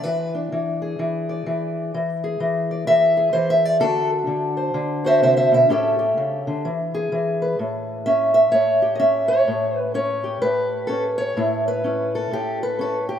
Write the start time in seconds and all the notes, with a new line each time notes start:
0.03 E3 B4
0.35 D4
0.52 E3
0.82 G#4
0.99 E3
1.29 D5
1.46 E3
1.94 E3
2.24 G#4
2.40 E3
2.71 D5
2.87 E3 E5
3.17 G#4
3.33 E3 C5
3.50 E5
3.65 D5
3.80 D3 D4 F#4 A4
4.27 D3
4.57 C5
4.74 D3
5.04 F#4 C5 E5
5.22 C3 C5 E5
5.37 C5 E5
5.52 B2 E5
5.69 A2 C#4 G4 A4 E5
5.99 G4
6.17 C#3
6.47 D3
6.65 E3
6.95 G#4
7.12 E3
7.42 B4
7.59 A2
8.06 C#4 E5
8.34 E5
8.52 A2 C#5
8.82 G4
8.95 D#5
8.99 C#4 E5
9.28 C#5
9.47 A2
9.77 B4
9.94 C#4 C#5
10.24 G4
10.42 A2 B4
10.87 C#4 A4
11.18 C#5
11.37 A2 E4
11.68 B4
11.84 C#4 E4
12.15 A4
12.31 A2 G4
12.63 B4
12.79 C#4 A4
13.09 G4